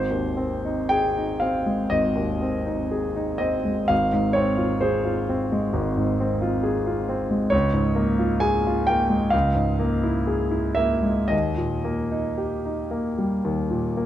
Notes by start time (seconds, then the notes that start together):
Already playing: G#1 C5
0.10 D#2
0.37 C4
0.65 D#4
0.89 G#4 G5
1.17 D#4
1.40 C4 F5
1.66 G#3
1.90 G#1 D#5
2.15 D#2
2.42 C4
2.66 D#4
2.91 G#4
3.16 D#4
3.38 C4 D#5
3.65 G#3
3.88 G#1 F5
4.12 G#2
4.33 C4 C#5
4.57 F4
4.81 G#4 C5
5.05 F4
5.29 C4
5.52 G#3
5.73 G#1
5.97 G#2
6.20 C4
6.42 F4
6.63 G#4
6.86 F4
7.09 C4
7.31 G#3
7.50 C#2 C#5
7.74 G#2
7.95 A#3
8.19 F4
8.40 G#4 G#5
8.67 F4
8.87 A#3 G5
9.10 G#3
9.30 C#2 F5
9.55 G#2
9.79 A#3
10.04 E4
10.27 G#4
10.51 E4
10.75 A#3 E5
11.03 G#3
11.28 D#2 D#5
11.57 A#2
11.85 A#3
12.11 D#4
12.37 G4
12.66 D#4
12.91 A#3
13.18 G3
13.44 D#2
13.71 A#2
13.97 A#3